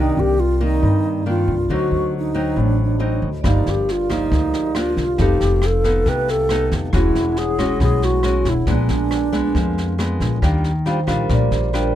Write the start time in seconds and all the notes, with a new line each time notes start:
Already playing: C2 C3 D#3 A#3 C4 D4 D#4 A#4 D5
0.17 C2 G4
0.40 F4
0.58 D#3 A#3 F4
0.63 D#4
0.83 G2
1.26 D#3 A#3 D4 F4
1.48 C2
1.69 D2 D3 F#3 C4 D#4 F#4 C5 D#5
1.91 D2
2.18 D#4
2.34 F#3 C4 D#4
2.56 A1 A2 D4
2.84 D4
2.98 F#3 C4 D4 D#4 F#4 C5 D#5
3.22 D2
3.41 G1 G2 F3 A#3 D4 G4 D5, kick, cross-stick, snare
3.45 D#4 A#4 F5
3.66 G1 G4, snare
3.89 F4, snare
4.10 F3 A#3 D#4, kick, cross-stick, snare
4.32 D2, kick, snare
4.54 snare
4.75 F3 A#3 D4 F4, cross-stick, snare
4.97 C2 D4 G4 A#4 F5, kick, snare
5.16 F1 F3 B3 D#4 A4 B4, kick, snare
5.21 G4 A4 F5
5.41 F1, snare
5.62 cross-stick, snare
5.66 A4
5.84 B3 D#4 A4, kick, snare
6.06 C2 C3 B4, kick, snare
6.28 A4, snare
6.49 B3 D#4 A4, cross-stick, snare
6.72 F1, kick, snare
6.90 E1 E3 G#3 C#4 E4 G#4, kick, cross-stick, snare
6.94 E4 F#4 C#5 F#5
7.15 E1, snare
7.37 G#4, snare
7.59 G#3 C#4 F#4, kick, cross-stick, snare
7.80 B1 B2 G#4, kick, snare
8.02 F#4, snare
8.23 G#3 C#4 F#4, cross-stick, snare
8.45 E1 E4, kick, snare
8.66 A#1 A#2 G#3 B3 D4 A#4 B4, kick, snare
8.72 G#5
8.89 A#1, snare
9.11 cross-stick, snare
9.33 G#3 B3 D4, kick, snare
9.55 F2 F3, kick, snare
9.78 snare
9.98 G#3 B3 D4, cross-stick, snare
10.20 A#1, kick, snare
10.42 D#2 D#3 G3 D4 F4, kick, cross-stick, snare
10.64 snare
10.86 G3 D4 F4 C5, snare
11.07 A#1 G3 D4 F4 A#4, kick, cross-stick, snare
11.29 A#1 A#2, kick, snare
11.34 D5
11.51 A#1 C5, snare
11.73 G3 D4 F4 A#4, cross-stick, snare